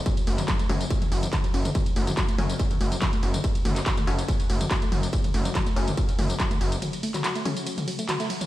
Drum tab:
RD |xxxxxxxxxxxxxxxx|xxxxxxxxxxxxxxxx|xxxxxxxxxxxxxxxx|xxxxxxxxxxxxxxxx|
HH |xxoxxxoxxxoxxxox|xxoxxxoxxxoxxxox|xxoxxxoxxxoxxxox|xxoxxxoxxxoxxxox|
TB |xx-xxx-xxx-xxx-x|xx-xxx-xxx-x-x-x|xx-xxx-xxx-xxx-x|xx-xxx-xxx-xxx-x|
CP |---xx-------x---|----x-------x---|---xx-------x---|----x-------x---|
T2 |o--o--o--o--o--o|o--o--o--o--o--o|--o--o--o--o--o-|-o--o--o--o--o--|
BD |o---o---o---o---|o---o---o---o---|o---o---o---o---|o---o---o---o---|

RD |xxxxxxxxxxxxxxxx|
HH |xxoxxxoxxxoxxxox|
TB |xx-xxx-xxx-xxx-x|
CP |---xx-------x---|
T2 |o--o--o--o--o--o|
BD |----------------|